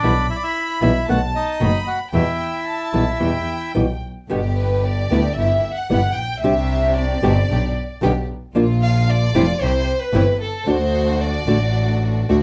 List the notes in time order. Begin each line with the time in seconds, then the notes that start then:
Already playing: D4 D5
0.02 B1 B2 E3 G3 B3 E4 B5
0.30 E4 E5
0.36 D5
0.43 E4 E5
0.81 B1 B2 E3 G3 B3 E4 E5
1.08 B1 B2 D#3 A3 B3 F#4 F#5 A5
1.35 D#4 D#5
1.60 F#1 B2 D#3 A3 B3 F#4 B5
1.87 F#4 F#5
2.12 E2 B2 E3 G3 B3 E4 E5 G5
2.67 A5
2.93 B1 B2 E3 G3 B3 E4
3.20 E2 B2 E3 G3 B3 E4 G5
3.75 B1 B2 E3 G3 B3 E4
4.30 G1 B2 D3 G3 B3 D4 G4
4.56 B4
4.83 D5
5.11 D2 G3 B3 D4 E4 G4
5.35 G1 B3 E4 G4 E5
5.75 F#5
5.90 G1 G3 B3 E4 G4
6.15 A#1 G5
6.43 C2 C3 G3 C4 D4 G4 E5
6.96 D5
7.23 G1 B2 D3 G3 B3 C4 D4 G4
7.49 B1 B3 D4 G4
8.02 B1 B2 D3 G3 B3 D4 G4
8.54 A#1 F3 A#3 D4 F4
8.83 F5
9.10 D5
9.34 F1 C3 E3 G3 A#3 C4 D4 E4 F4
9.60 C2 C4 E4 G4 C5
10.01 B4
10.13 G1 C3 E3 G3 C4 E4 G4
10.42 A4
10.66 D2 D3 A3 D4 F#4 C5
11.22 D5
11.47 A1 D3 A3 D4 F#4
12.29 D2 D3 A3 D4 F#4